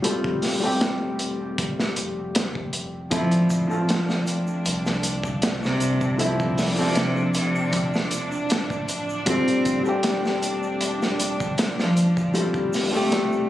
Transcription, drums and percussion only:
0.04 closed hi-hat medium
0.24 kick loud
0.42 snare soft
0.42 open hi-hat medium
0.81 snare loud
0.81 closed hi-hat medium
1.19 closed hi-hat medium
1.58 kick loud
1.58 closed hi-hat medium
1.79 snare soft
1.96 closed hi-hat medium
2.35 snare loud
2.35 closed hi-hat medium
2.55 kick medium
2.73 closed hi-hat medium
3.11 kick loud
3.11 closed hi-hat medium
3.11 shaker soft
3.31 closed hi-hat soft
3.31 shaker soft
3.50 kick medium
3.50 closed hi-hat medium
3.50 shaker medium
3.71 shaker soft
3.89 snare loud
3.89 closed hi-hat medium
3.89 shaker soft
4.09 snare medium
4.09 shaker soft
4.27 closed hi-hat medium
4.27 shaker medium
4.47 shaker soft
4.66 closed hi-hat medium
4.66 shaker soft
4.86 snare soft
4.86 shaker soft
5.03 closed hi-hat medium
5.03 shaker medium
5.23 kick medium
5.23 shaker soft
5.42 snare loud
5.42 closed hi-hat medium
5.42 shaker medium
5.63 snare soft
5.63 shaker soft
5.80 closed hi-hat medium
5.80 shaker medium
6.01 kick medium
6.01 shaker soft
6.19 closed hi-hat medium
6.19 shaker soft
6.40 kick medium
6.40 shaker soft
6.58 snare soft
6.58 open hi-hat medium
6.58 shaker medium
6.78 shaker soft
6.95 snare loud
6.95 closed hi-hat medium
6.95 shaker soft
7.16 shaker soft
7.34 closed hi-hat medium
7.34 shaker medium
7.55 triangle medium
7.55 shaker soft
7.73 kick loud
7.73 closed hi-hat medium
7.73 shaker soft
7.93 snare medium
7.93 shaker soft
8.11 closed hi-hat medium
8.11 shaker medium
8.32 shaker soft
8.49 snare loud
8.49 closed hi-hat medium
8.49 shaker soft
8.70 kick medium
8.70 shaker soft
8.88 closed hi-hat medium
8.88 shaker medium
9.09 shaker soft
9.26 kick loud
9.26 closed hi-hat medium
9.26 shaker soft
9.48 closed hi-hat soft
9.48 shaker soft
9.65 kick medium
9.65 closed hi-hat medium
9.65 shaker medium
9.85 shaker soft
10.03 snare loud
10.03 closed hi-hat medium
10.03 shaker soft
10.25 snare soft
10.25 shaker soft
10.43 closed hi-hat medium
10.43 shaker medium
10.63 shaker soft
10.81 closed hi-hat medium
10.81 shaker soft
11.02 snare soft
11.02 shaker soft
11.19 closed hi-hat medium
11.19 shaker medium
11.40 kick medium
11.40 shaker soft
11.58 snare loud
11.58 closed hi-hat medium
11.58 shaker soft
11.79 snare medium
11.79 shaker soft
11.97 closed hi-hat medium
11.97 shaker medium
12.17 kick medium
12.17 shaker soft
12.34 closed hi-hat medium
12.34 shaker soft
12.54 kick medium
12.54 shaker soft
12.73 snare soft
12.73 open hi-hat medium
12.73 shaker medium
12.94 shaker soft
13.12 snare loud
13.12 closed hi-hat medium
13.12 shaker soft
13.32 shaker soft

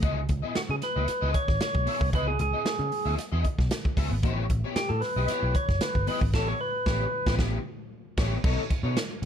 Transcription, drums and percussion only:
0.02 kick loud
0.02 closed hi-hat medium
0.29 kick medium
0.29 closed hi-hat medium
0.55 snare loud
0.55 closed hi-hat medium
0.82 snare soft
0.82 closed hi-hat medium
1.08 snare soft
1.08 closed hi-hat medium
1.34 kick medium
1.34 closed hi-hat medium
1.48 kick medium
1.48 snare soft
1.61 snare loud
1.61 closed hi-hat medium
1.75 kick medium
1.87 open hi-hat medium
2.01 kick loud
2.13 kick loud
2.13 closed hi-hat medium
2.39 closed hi-hat medium
2.66 snare loud
2.66 closed hi-hat medium
2.92 open hi-hat soft
3.18 snare soft
3.18 closed hi-hat medium
3.44 kick medium
3.44 closed hi-hat medium
3.59 kick medium
3.59 snare soft
3.71 snare loud
3.71 closed hi-hat loud
3.85 kick medium
3.97 kick medium
3.97 open hi-hat medium
4.23 kick loud
4.23 closed hi-hat medium
4.50 kick medium
4.50 closed hi-hat medium
4.76 snare loud
4.76 closed hi-hat medium
5.02 snare soft
5.02 open hi-hat soft
5.28 snare soft
5.28 closed hi-hat medium
5.55 kick medium
5.55 closed hi-hat medium
5.69 kick medium
5.69 snare soft
5.81 snare loud
5.81 closed hi-hat loud
5.95 kick medium
6.07 open hi-hat medium
6.21 kick loud
6.33 kick loud
6.33 snare loud
6.33 crash medium
6.86 kick loud
6.86 snare loud
7.26 kick loud
7.26 snare loud
7.39 kick loud
7.39 snare loud
8.17 kick loud
8.17 snare loud
8.17 crash medium
8.44 kick loud
8.44 crash loud
8.70 kick medium
8.70 closed hi-hat medium
8.97 snare loud
8.97 closed hi-hat medium

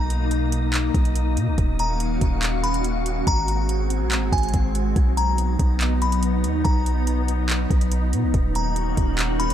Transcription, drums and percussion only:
0.10 closed hi-hat medium
0.31 closed hi-hat medium
0.52 closed hi-hat medium
0.74 clap loud
0.74 closed hi-hat medium
0.94 kick loud
0.94 closed hi-hat medium
1.05 closed hi-hat medium
1.16 closed hi-hat medium
1.37 closed hi-hat medium
1.58 kick loud
1.58 closed hi-hat medium
1.79 closed hi-hat medium
2.00 closed hi-hat medium
2.21 kick loud
2.21 closed hi-hat medium
2.43 clap loud
2.43 closed hi-hat medium
2.64 closed hi-hat medium
2.74 closed hi-hat medium
2.84 closed hi-hat medium
3.06 closed hi-hat medium
3.27 kick loud
3.27 closed hi-hat medium
3.48 closed hi-hat medium
3.69 closed hi-hat medium
3.90 closed hi-hat medium
4.12 clap loud
4.12 closed hi-hat medium
4.32 kick loud
4.32 closed hi-hat medium
4.38 closed hi-hat medium
4.43 closed hi-hat medium
4.49 closed hi-hat soft
4.54 kick medium
4.54 closed hi-hat medium
4.75 closed hi-hat medium
4.96 kick loud
4.96 closed hi-hat medium
5.17 closed hi-hat medium
5.38 closed hi-hat medium
5.59 kick medium
5.59 closed hi-hat medium
5.81 clap loud
5.81 closed hi-hat medium
6.02 closed hi-hat medium
6.12 closed hi-hat medium
6.23 closed hi-hat medium
6.44 closed hi-hat medium
6.65 kick loud
6.65 closed hi-hat medium
6.86 closed hi-hat medium
7.07 closed hi-hat medium
7.28 closed hi-hat medium
7.50 clap loud
7.50 closed hi-hat medium
7.70 kick loud
7.70 closed hi-hat medium
7.81 closed hi-hat medium
7.92 closed hi-hat medium
8.13 closed hi-hat medium
8.34 kick loud
8.34 closed hi-hat medium
8.55 closed hi-hat medium
8.76 closed hi-hat medium
8.97 kick medium
8.97 closed hi-hat medium
9.19 clap loud
9.19 closed hi-hat medium
9.40 closed hi-hat medium
9.50 closed hi-hat medium

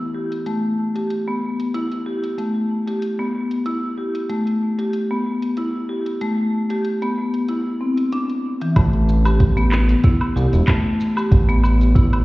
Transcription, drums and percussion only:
0.32 closed hi-hat soft
0.46 closed hi-hat soft
0.96 closed hi-hat soft
1.10 closed hi-hat soft
1.60 closed hi-hat soft
1.74 closed hi-hat soft
1.92 closed hi-hat soft
2.24 closed hi-hat soft
2.38 closed hi-hat soft
2.88 closed hi-hat soft
3.02 closed hi-hat medium
3.51 closed hi-hat soft
3.66 closed hi-hat soft
4.15 closed hi-hat soft
4.30 closed hi-hat soft
4.47 closed hi-hat soft
4.79 closed hi-hat soft
4.93 closed hi-hat soft
5.42 closed hi-hat soft
5.57 closed hi-hat medium
6.06 closed hi-hat soft
6.21 closed hi-hat soft
6.70 closed hi-hat soft
6.85 closed hi-hat soft
7.02 closed hi-hat soft
7.34 closed hi-hat soft
7.48 closed hi-hat soft
7.97 closed hi-hat soft
8.12 closed hi-hat medium
8.30 closed hi-hat soft
8.61 closed hi-hat soft
8.76 kick loud
8.76 closed hi-hat medium
8.76 low woodblock medium
8.76 shaker soft
8.93 closed hi-hat soft
9.09 shaker medium
9.25 closed hi-hat soft
9.25 low woodblock medium
9.25 shaker soft
9.40 kick loud
9.40 closed hi-hat medium
9.40 shaker soft
9.57 closed hi-hat soft
9.72 clap medium
9.72 low woodblock medium
9.72 shaker medium
9.89 closed hi-hat soft
9.89 shaker soft
10.04 kick loud
10.04 closed hi-hat medium
10.04 shaker soft
10.21 low woodblock medium
10.37 shaker medium
10.53 closed hi-hat soft
10.53 shaker soft
10.68 kick loud
10.68 clap medium
10.68 closed hi-hat medium
10.68 low woodblock medium
10.68 shaker soft
11.01 shaker medium
11.17 low woodblock medium
11.17 shaker soft
11.32 kick loud
11.32 closed hi-hat medium
11.32 shaker soft
11.49 closed hi-hat soft
11.64 low woodblock medium
11.64 shaker medium
11.81 closed hi-hat soft
11.81 shaker soft
11.95 kick loud
11.95 closed hi-hat medium
11.95 shaker soft
12.13 closed hi-hat soft
12.13 low woodblock medium

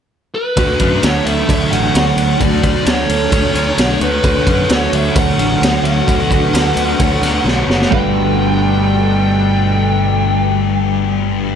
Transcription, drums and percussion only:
0.57 kick loud
0.57 ride medium
0.80 kick medium
0.80 ride medium
1.03 snare loud
1.03 ride loud
1.26 ride medium
1.49 kick loud
1.49 ride loud
1.73 ride medium
1.95 snare loud
1.95 ride loud
2.18 ride medium
2.41 kick medium
2.41 ride medium
2.63 kick medium
2.63 ride medium
2.86 snare loud
2.86 ride medium
3.09 ride medium
3.32 kick loud
3.32 ride loud
3.55 ride medium
3.78 snare loud
3.78 ride medium
4.01 ride medium
4.24 kick medium
4.24 ride medium
4.47 kick medium
4.47 ride medium
4.70 snare loud
4.70 ride medium
4.93 ride medium
5.16 kick loud
5.16 ride loud
5.39 ride medium
5.63 snare loud
5.63 ride loud
5.85 ride medium
6.08 kick medium
6.08 ride medium
6.31 kick medium
6.31 ride medium
6.55 snare loud
6.55 ride loud
6.77 ride medium
7.00 kick loud
7.00 ride medium
7.23 snare soft
7.23 ride medium
7.48 snare medium
7.70 snare medium
7.82 snare medium
7.92 kick medium

